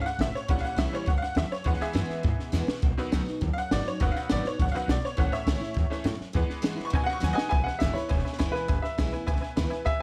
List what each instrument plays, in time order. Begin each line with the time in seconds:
Already playing: steel-string acoustic guitar G#2
0.02 honky-tonk piano F5, muted upright bass stroke
0.06 honky-tonk piano F#5, snare
0.18 upright bass A1, steel-string acoustic guitar A2, honky-tonk piano E5, snare, hi-hat pedal
0.34 honky-tonk piano C#5, muted upright bass stroke, snare
0.48 upright bass A#1, steel-string acoustic guitar A#2, honky-tonk piano E3 G3 C#4 F#5, kick, snare
0.57 honky-tonk piano F5, snare
0.63 honky-tonk piano F#5, muted upright bass stroke, snare
0.76 upright bass C2, steel-string acoustic guitar E3 G3 C#4 E4, honky-tonk piano E5, snare, hi-hat pedal
0.93 honky-tonk piano E3 G3 C#4 C#5, muted upright bass stroke, snare
1.06 upright bass C#2, steel-string acoustic guitar G2, honky-tonk piano F#5, kick, snare
1.18 honky-tonk piano F5, muted upright bass stroke
1.22 honky-tonk piano F#5, snare
1.35 upright bass D#2, steel-string acoustic guitar F#2, honky-tonk piano E5, snare, hi-hat pedal
1.52 honky-tonk piano C#5, snare
1.64 steel-string acoustic guitar E2, upright bass E2, honky-tonk piano E3 G#3 B3 F#5, kick, snare
1.74 snare
1.80 honky-tonk piano G#4 E5, muted upright bass stroke, snare
1.93 upright bass F#2, steel-string acoustic guitar E3 G#3 B3 E4, snare, hi-hat pedal
2.09 muted upright bass stroke, snare
2.23 upright bass G#2, steel-string acoustic guitar B2, kick, snare
2.38 muted upright bass stroke, snare
2.52 upright bass E2, steel-string acoustic guitar E3 G#3 B3 E4, snare, hi-hat pedal
2.67 steel-string acoustic guitar B3 E4, muted upright bass stroke, snare
2.82 upright bass B1, steel-string acoustic guitar B2, kick, snare
2.98 honky-tonk piano D#3 F#3 B3, muted upright bass stroke, snare
3.12 upright bass C#2, steel-string acoustic guitar F#3 B3 D#4 F#4, snare, hi-hat pedal
3.26 steel-string acoustic guitar D#4 F#4, snare
3.41 upright bass D#2, steel-string acoustic guitar F#2, kick, snare
3.53 honky-tonk piano F5, muted upright bass stroke, snare
3.58 honky-tonk piano F#5
3.71 upright bass G#1, steel-string acoustic guitar F#3 B3 D#4 F#4, honky-tonk piano D5, snare, hi-hat pedal
3.85 steel-string acoustic guitar D#4 F#4, honky-tonk piano C#5, snare
4.00 upright bass F#1, steel-string acoustic guitar B2, honky-tonk piano D#3 F#3 B3 F#5, kick, snare
4.12 honky-tonk piano F5, snare
4.16 honky-tonk piano F#5
4.29 upright bass G#1, steel-string acoustic guitar F#3 B3 D#4 F#4, honky-tonk piano D5, snare, hi-hat pedal
4.45 steel-string acoustic guitar D#4 F#4, honky-tonk piano C#5, muted upright bass stroke, snare
4.59 upright bass A1, steel-string acoustic guitar F#2, honky-tonk piano F#5, kick, snare
4.67 snare
4.72 honky-tonk piano D#3 F#3 B3 F5, snare
4.76 honky-tonk piano F#5
4.88 upright bass B1, steel-string acoustic guitar B2, honky-tonk piano D5, snare, hi-hat pedal
5.03 honky-tonk piano C#5, muted upright bass stroke, snare
5.17 upright bass A1, steel-string acoustic guitar A2, honky-tonk piano E3 A3 C#4 F#5, kick, snare
5.32 honky-tonk piano C#5 E5, muted upright bass stroke, snare
5.46 upright bass C#2, steel-string acoustic guitar E3 A3 C#4 E4, snare, hi-hat pedal
5.60 steel-string acoustic guitar C#4 E4, muted upright bass stroke, snare
5.74 upright bass E2, steel-string acoustic guitar G#2, kick, snare
5.90 honky-tonk piano E3 A3 C#4, muted upright bass stroke, snare
6.04 steel-string acoustic guitar F#2, upright bass A2, snare, hi-hat pedal
6.20 muted upright bass stroke, snare
6.33 steel-string acoustic guitar E2, upright bass E2, honky-tonk piano E3 G#3 B3, kick, snare
6.49 muted upright bass stroke, snare
6.62 upright bass G#2, steel-string acoustic guitar E3 G#3 B3 E4, snare, hi-hat pedal
6.76 steel-string acoustic guitar B3 E4, muted upright bass stroke, snare
6.85 honky-tonk piano C#6
6.90 steel-string acoustic guitar B2, upright bass B2, honky-tonk piano D#3 F#3 B3, kick, snare
6.95 honky-tonk piano G#5
7.04 honky-tonk piano F#5, upright piano F#5
7.08 muted upright bass stroke, snare
7.13 honky-tonk piano C#6
7.20 upright bass D#2, steel-string acoustic guitar F#3 B3 D#4 F#4, honky-tonk piano G#5, snare, hi-hat pedal
7.33 steel-string acoustic guitar D#4 F#4, honky-tonk piano D#5 F#5, upright piano G#5
7.38 snare
7.49 upright bass B1, steel-string acoustic guitar E2, honky-tonk piano B4 E5 G#5, upright piano G#5, kick, snare
7.64 honky-tonk piano B4 E5 G#5, upright piano F#5, muted upright bass stroke, snare
7.79 upright bass G#1, steel-string acoustic guitar E3 G#3 B3 E4, honky-tonk piano B4 E5 G#5, upright piano E5, kick, snare, hi-hat pedal
7.94 steel-string acoustic guitar B3 E4, honky-tonk piano B4 E5 B5, upright piano C#5, muted upright bass stroke, snare
8.09 upright bass E1, steel-string acoustic guitar B2, honky-tonk piano B4 E5 G#5, kick, snare
8.18 snare
8.24 honky-tonk piano B4 E5 G#5, muted upright bass stroke, snare
8.33 snare
8.38 upright bass F#1, steel-string acoustic guitar E3 G#3 B3 E4, honky-tonk piano B4 E5 G#5, kick, snare, hi-hat pedal
8.52 upright piano B4, honky-tonk piano B4 E5 G#5, snare
8.68 upright bass G#1, steel-string acoustic guitar E2, honky-tonk piano B4 E5 G#5, kick, snare
8.82 honky-tonk piano B4 E5 B5, upright piano E5, muted upright bass stroke, snare
8.98 upright bass B1, steel-string acoustic guitar E3 G#3 B3 E4, honky-tonk piano B4 E5 G#5, kick, snare, hi-hat pedal
9.12 steel-string acoustic guitar B3 E4, honky-tonk piano B4 E5 G#5, muted upright bass stroke, snare
9.26 upright bass C#2, steel-string acoustic guitar B2, honky-tonk piano B4 E5 G#5, kick, snare
9.36 snare
9.40 honky-tonk piano B4 E5 G#5, muted upright bass stroke, snare
9.56 upright bass D#2, steel-string acoustic guitar E3 G#3 B3 E4, honky-tonk piano B4 E5 B5, kick, snare, hi-hat pedal
9.69 steel-string acoustic guitar E4, honky-tonk piano B4 E5 G#5, snare
9.74 steel-string acoustic guitar B3
9.85 upright bass E2, steel-string acoustic guitar E2, honky-tonk piano B4 E5 G#5, upright piano E5, kick, snare